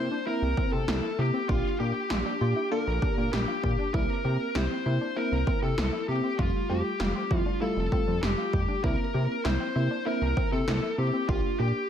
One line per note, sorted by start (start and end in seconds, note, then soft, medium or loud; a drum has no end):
0.00 0.17 A#3 medium
0.00 0.17 C4 medium
0.00 0.17 E4 medium
0.00 0.26 C5 medium
0.11 0.23 D4 medium
0.27 0.48 A#3 medium
0.27 0.48 C4 medium
0.27 0.48 E4 loud
0.27 0.51 E4 medium
0.27 0.72 A#4 medium
0.42 0.55 C2 loud
0.57 0.78 A#3 medium
0.57 0.78 C4 medium
0.57 0.82 C4 medium
0.57 0.78 E4 medium
0.57 kick medium
0.73 0.85 C3 medium
0.73 1.20 A4 medium
0.88 1.01 C2 loud
0.88 1.09 A#3 medium
0.88 1.09 C4 medium
0.88 1.09 E4 medium
0.88 snare loud
1.03 1.27 E4 medium
1.18 1.31 C3 loud
1.18 1.40 A#3 medium
1.18 1.40 C4 medium
1.18 1.40 E4 medium
1.18 1.49 G4 medium
1.34 1.46 C4 medium
1.49 1.62 A#1 loud
1.49 1.70 A#3 medium
1.49 1.70 D4 medium
1.49 1.73 F4 medium
1.49 1.79 F4 medium
1.49 1.70 G4 loud
1.49 kick loud
1.80 1.92 A#2 loud
1.80 2.01 A#3 medium
1.80 2.01 D4 medium
1.80 2.01 G4 medium
1.80 2.04 G4 medium
1.80 2.68 G4 medium
2.10 2.23 A#1 loud
2.10 2.31 A#3 medium
2.10 2.31 D4 medium
2.10 2.22 F4 medium
2.10 2.31 G4 medium
2.10 snare loud
2.26 2.38 D4 medium
2.41 2.54 A#2 loud
2.41 2.62 A#3 medium
2.41 2.62 D4 medium
2.41 2.53 F4 medium
2.41 2.62 G4 medium
2.56 2.68 E4 medium
2.71 2.93 A#3 medium
2.71 2.93 D4 medium
2.71 2.96 F4 medium
2.71 2.93 A4 loud
2.71 3.33 A#4 medium
2.87 3.00 A#1 loud
3.02 3.23 A#3 medium
3.02 3.23 D4 medium
3.02 3.26 D4 medium
3.02 3.23 G4 medium
3.02 kick medium
3.17 3.30 A#2 medium
3.33 3.46 A#1 medium
3.33 3.54 A#3 medium
3.33 3.54 D4 medium
3.33 3.54 G4 medium
3.33 3.94 G4 medium
3.33 snare loud
3.48 3.72 F4 medium
3.63 3.76 A#2 loud
3.63 3.84 A#3 medium
3.63 3.84 D4 medium
3.63 3.84 G4 medium
3.63 kick medium
3.79 3.91 D4 medium
3.94 4.07 C2 loud
3.94 4.15 A#3 medium
3.94 4.15 C4 medium
3.94 4.15 E4 loud
3.94 4.18 E4 medium
3.94 4.57 A#4 medium
3.94 kick loud
4.25 4.37 C3 loud
4.25 4.46 A#3 medium
4.25 4.46 C4 medium
4.25 4.46 E4 medium
4.25 4.49 G4 medium
4.55 4.68 C2 medium
4.55 4.76 A#3 medium
4.55 4.76 C4 medium
4.55 4.67 E4 medium
4.55 4.76 G4 medium
4.55 5.18 C5 medium
4.55 snare loud
4.71 4.83 C4 medium
4.86 4.99 C3 loud
4.86 5.07 A#3 medium
4.86 5.07 C4 medium
4.86 5.07 E4 medium
4.86 4.98 E4 medium
5.01 5.13 D4 medium
5.16 5.37 A#3 medium
5.16 5.37 C4 medium
5.16 5.37 E4 loud
5.16 5.41 E4 medium
5.16 5.59 A#4 medium
5.32 5.44 C2 medium
5.47 5.68 A#3 medium
5.47 5.71 C4 medium
5.47 5.68 C4 medium
5.47 5.68 E4 medium
5.47 kick medium
5.62 5.75 C3 medium
5.62 6.05 A4 medium
5.78 5.90 C2 medium
5.78 5.99 A#3 medium
5.78 5.99 C4 medium
5.78 5.99 E4 medium
5.78 snare loud
5.93 6.17 E4 medium
6.08 6.21 C3 loud
6.08 6.29 A#3 medium
6.08 6.29 C4 medium
6.08 6.29 E4 medium
6.08 6.40 G4 medium
6.24 6.36 C4 medium
6.39 6.52 F1 loud
6.39 6.60 G3 medium
6.39 6.60 A3 medium
6.39 6.60 F4 loud
6.39 6.63 F4 medium
6.39 6.67 F4 medium
6.39 kick loud
6.70 6.82 F2 medium
6.70 6.91 G3 medium
6.70 6.91 A3 medium
6.70 6.91 F4 medium
6.70 6.94 G4 medium
6.70 7.37 G4 medium
7.00 7.13 F1 loud
7.00 7.21 G3 medium
7.00 7.21 A3 medium
7.00 7.21 F4 medium
7.00 7.12 F4 medium
7.00 snare loud
7.15 7.28 C4 medium
7.31 7.43 F2 medium
7.31 7.52 G3 medium
7.31 7.52 A3 medium
7.31 7.43 E4 medium
7.31 7.52 F4 medium
7.31 kick loud
7.37 7.61 F4 medium
7.46 7.58 D4 medium
7.61 7.82 G3 medium
7.61 7.82 A3 medium
7.61 7.86 E4 medium
7.61 7.82 F4 loud
7.61 8.22 A4 medium
7.77 7.89 F1 loud
7.92 8.13 G3 medium
7.92 8.13 A3 medium
7.92 8.16 C4 medium
7.92 8.13 F4 medium
7.92 kick medium
8.07 8.20 F2 medium
8.23 8.35 F1 medium
8.23 8.44 G3 medium
8.23 8.44 A3 medium
8.23 8.44 F4 medium
8.23 8.84 G4 medium
8.23 snare loud
8.38 8.62 F4 medium
8.53 8.66 F2 medium
8.53 8.74 G3 medium
8.53 8.74 A3 medium
8.53 8.74 G4 medium
8.53 kick medium
8.68 8.81 D4 medium
8.84 8.96 C2 loud
8.84 9.05 A#3 medium
8.84 9.05 C4 medium
8.84 9.08 E4 medium
8.84 9.05 E4 loud
8.84 9.45 A#4 medium
8.84 kick loud
9.14 9.27 C3 medium
9.14 9.36 A#3 medium
9.14 9.36 C4 medium
9.14 9.36 E4 medium
9.14 9.39 G4 medium
9.45 9.58 C2 loud
9.45 9.66 A#3 medium
9.45 9.66 C4 medium
9.45 9.57 E4 medium
9.45 9.66 E4 medium
9.45 10.06 C5 loud
9.45 snare loud
9.60 9.72 C4 medium
9.76 9.88 C3 loud
9.76 9.97 A#3 medium
9.76 9.97 C4 medium
9.76 9.88 E4 medium
9.76 9.97 E4 medium
9.91 10.03 D4 medium
10.06 10.27 A#3 medium
10.06 10.27 C4 medium
10.06 10.27 E4 loud
10.06 10.31 E4 medium
10.06 10.52 A#4 medium
10.22 10.34 C2 loud
10.37 10.58 A#3 medium
10.37 10.61 C4 medium
10.37 10.58 C4 medium
10.37 10.58 E4 medium
10.37 kick medium
10.52 10.65 C3 loud
10.52 10.95 A4 medium
10.67 10.80 C2 loud
10.67 10.89 A#3 medium
10.67 10.89 C4 medium
10.67 10.89 E4 medium
10.67 snare loud
10.83 11.07 E4 medium
10.98 11.11 C3 loud
10.98 11.19 A#3 medium
10.98 11.19 C4 medium
10.98 11.19 E4 medium
10.98 11.29 G4 medium
11.13 11.26 C4 medium
11.29 11.41 A#1 loud
11.29 11.50 A#3 medium
11.29 11.50 D4 medium
11.29 11.53 F4 loud
11.29 11.59 F4 medium
11.29 11.50 G4 loud
11.29 kick loud
11.59 11.72 A#2 loud
11.59 11.80 A#3 medium
11.59 11.80 D4 medium
11.59 11.80 G4 medium
11.59 11.84 G4 medium
11.59 11.89 G4 medium